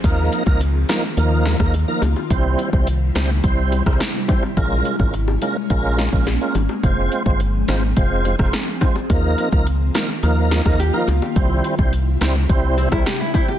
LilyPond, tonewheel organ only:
\new Staff \with { instrumentName = "Tonewheel organ" } { \time 4/4 \key ees \mixolydian \tempo 4 = 106 <f bes ees' bes'>8. <f bes ees' bes'>16 r8 <f bes ees' bes'>16 r16 <f bes ees' bes'>8. <f bes ees' bes'>16 r16 <f bes ees' bes'>16 r8 | <g c' e' c''>8. <g c' e' c''>16 r8 <g c' e' c''>16 r16 <g c' e' c''>8. <g c' e' c''>16 r8 <g c' e' c''>16 r16 | <aes des' f' bes'>8. <aes des' f' bes'>16 r8 <aes des' f' bes'>16 r16 <aes des' f' bes'>8. <aes des' f' bes'>16 r16 <aes des' f' bes'>16 r8 | <aes c' f' c''>8. <aes c' f' c''>16 r8 <aes c' f' c''>16 r16 <aes c' f' c''>8. <aes c' f' c''>16 r8 <aes c' f' c''>16 r16 |
<f bes ees' bes'>8. <f bes ees' bes'>16 r8 <f bes ees' bes'>16 r16 <f bes ees' bes'>8. <f bes ees' bes'>16 r16 <f bes ees' bes'>16 r8 | <g c' e' c''>8. <g c' e' c''>16 r8 <g c' e' c''>16 r16 <g c' e' c''>8. <g c' e' c''>16 r8 <g c' e' c''>16 r16 | }